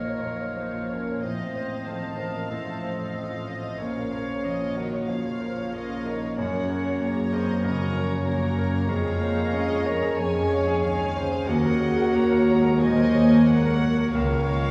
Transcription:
Already playing: A#1 A#2 F3 A#3 D#4 F4 A#4 C#5 D#5 F5
0.07 F4
0.22 F#3 A#4
0.40 C#5
0.55 F3 A#3 C5 C#5
0.74 F4
0.88 C#4 A#4 C#5
1.07 C#5
1.21 A1 A2 F3 C4 C5 D#5 F5
1.39 F4
1.54 C5 D#5
1.72 D#5
1.86 D#3 C4 A4 F5 A5
2.03 F4
2.17 F3 A#3 A#4 C5
2.33 D#5
2.49 A2 F3 A3 A4 C5 D#5 A5
2.65 F4
2.82 C5 F5
2.99 D#5
3.13 C4 C5 F5
3.31 F4
3.47 C5 D#5
3.64 D#5
3.78 A#1 A#2 C#3 F3 C#4 A#4 C#5
3.97 F4
4.12 A#4 F5
4.29 C#5
4.43 F3 A#3 D#5
4.62 F4
4.75 D#3 F#4 A#4 C#5 F#5
4.92 C#5
5.06 C#3 F3 F4 C#5 F5
5.25 F4
5.40 A#4 C5
5.57 C#5
5.73 A#3 A#4 D#5
5.90 F4
6.05 D#4 A#4 C#5 D#5
6.22 C#5
6.37 F#2 A#3 C#4 C#5 F#5
6.54 F#4
6.70 A#4
6.85 C#5
7.00 A#3 G#4 C#5 A#5
7.17 F#4
7.30 C4 A#4 C5 D#5
7.48 C#5
7.63 C#3 D#3 A#3 F#4 A#4 C#5 D#5 A#5
7.81 F#4
7.96 F3 A#4 C#5
8.13 C#5
8.26 F#3 A#3 C#4 A#4 C#5 A#5
8.44 F#4
8.59 A#4
8.74 C#5
8.88 F2 G#3 F4 G#4 C#5 F5
9.04 G#4
9.21 A#3 C5 C#5
9.36 G#4
9.53 G#3 C#4 C#5 D#5
9.70 G#4
9.85 F3 A#4 C#5 A#5
10.02 G#4
10.18 F2 G#3 G#4 C#5 G#5
10.35 C#4
10.51 C#5 F5
10.67 G#4
10.81 C#2 D#3 C#4 C#5 F5
11.00 G#4
11.15 C#3 C5 C#5
11.31 G#4
11.46 D#2 A#3 F#4 A#4 C#5 D#5 F#5
11.63 A#4
11.81 G#4 C#5
11.97 A#4
12.13 A#3 A#4 C#5 A#5
12.30 A#4
12.46 G#3 C#5
12.63 A#4
12.79 A#2 F#3 A#3 D#4 C5 C#5 D#5 G#5
12.96 A#4
13.13 A#3 C#5
13.30 A#4
13.46 G#3 A#3 A#4 F#5
13.65 A#4
13.81 F#3 C#5
13.98 A#4
14.11 C#2 G#3 A#3 F4 A#4 C#5 F5
14.31 A#4
14.47 C#5
14.63 A#4

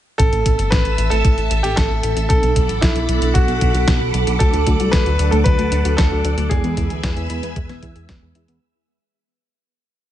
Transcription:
0.18 A1 A3 A4 E5 A5 E6, kick, closed hi-hat
0.33 A1, closed hi-hat
0.46 A1, kick, closed hi-hat
0.59 G1, closed hi-hat
0.70 A1 B4, kick, snare, closed hi-hat
0.85 A1, closed hi-hat
0.98 A1 E3 A3 C4, closed hi-hat
1.10 A1 A4, closed hi-hat
1.25 A1, kick, closed hi-hat
1.38 A1, closed hi-hat
1.51 A1, closed hi-hat
1.63 A1 G4, closed hi-hat
1.76 A1 A4, kick, snare, closed hi-hat
1.90 A1
2.03 A1, closed hi-hat
2.17 A1, closed hi-hat
2.29 B1 F#3 B3 D4 A4 F#5 B5 D6, kick, closed hi-hat
2.43 B1, closed hi-hat
2.56 B1, kick, closed hi-hat
2.69 A1, closed hi-hat
2.81 B1 E4, kick, snare, closed hi-hat
2.96 B1, closed hi-hat
3.09 B1 F#3 B3 D4 A4, closed hi-hat
3.22 B1, closed hi-hat
3.34 B1 F#4, kick, closed hi-hat
3.48 B1, closed hi-hat
3.61 B1, kick, closed hi-hat
3.75 B1, closed hi-hat
3.88 B1, kick, snare, closed hi-hat
4.01 B1
4.14 B1, closed hi-hat
4.27 B1, closed hi-hat
4.39 D2 F#3 A3 D4 A4 D5, kick, closed hi-hat
4.54 D2 A3, closed hi-hat
4.67 D2 D4, kick, closed hi-hat
4.80 C2 F#4, closed hi-hat
4.91 D2 A4 B4, kick, snare, closed hi-hat
5.06 D2 F#4, closed hi-hat
5.19 D2 F#3 A3 D4 A4, closed hi-hat
5.31 D2 A3 A4, closed hi-hat
5.44 D2 F#3 B4, kick, closed hi-hat
5.59 D2 A3, closed hi-hat
5.72 D2 D4, closed hi-hat
5.85 D2 F#4, closed hi-hat
5.97 D2 A4, kick, snare, closed hi-hat
6.11 D2 F#4
6.24 D2 D4, closed hi-hat
6.38 D2 A3, closed hi-hat
6.49 E2 E3 G#3 B3 G#4 B4 E5 G#5 E6, kick, closed hi-hat
6.64 E2 B3, closed hi-hat
6.77 E2 E4, kick, closed hi-hat
6.90 D2 G#4, closed hi-hat
7.04 E2 B4, kick, snare, closed hi-hat
7.17 E2 G#4, closed hi-hat
7.30 E2 E3 G#3 B3 E4 G#4, closed hi-hat
7.43 E2 B3, closed hi-hat
7.56 E2 G#3, kick, closed hi-hat
7.69 E1 B3, snare, closed hi-hat
7.83 E2 E4, kick, closed hi-hat
7.96 E2 G#4, closed hi-hat
8.09 E1 B4, kick, snare, closed hi-hat
8.22 E2 G#4
8.35 E2 E4, closed hi-hat
8.48 E2 B3, closed hi-hat

